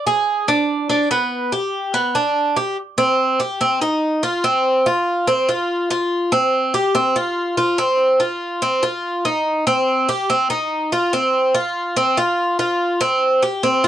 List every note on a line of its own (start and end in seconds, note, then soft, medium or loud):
0.07 0.47 G#4 medium
0.48 0.88 D4 medium
0.90 1.10 D4 medium
1.11 1.51 B3 medium
1.52 1.93 G4 medium
1.94 2.14 B3 medium
2.15 2.55 D4 medium
2.56 2.76 G4 medium
2.98 3.38 C4 medium
3.40 3.60 G4 medium
3.61 3.81 C4 medium
3.81 4.22 D#4 medium
4.23 4.43 F4 medium
4.44 4.84 C4 medium
4.86 5.26 F4 medium
5.27 5.48 C4 medium
5.49 5.89 F4 medium
5.90 6.31 F4 medium
6.32 6.73 C4 medium
6.74 6.94 G4 medium
6.95 7.15 C4 medium
7.16 7.56 F4 medium
7.57 7.78 F4 medium
7.78 8.19 C4 medium
8.20 8.60 F4 medium
8.62 8.82 C4 medium
8.83 9.23 F4 medium
9.25 9.65 D#4 medium
9.67 10.07 C4 medium
10.09 10.29 G4 medium
10.30 10.49 C4 medium
10.50 10.90 D#4 medium
10.92 11.12 F4 medium
11.13 11.53 C4 medium
11.54 11.95 F4 medium
11.96 12.17 C4 medium
12.17 12.58 F4 medium
12.59 12.99 F4 medium
13.01 13.41 C4 medium
13.42 13.63 G4 medium
13.63 13.84 C4 medium
13.84 13.88 F4 medium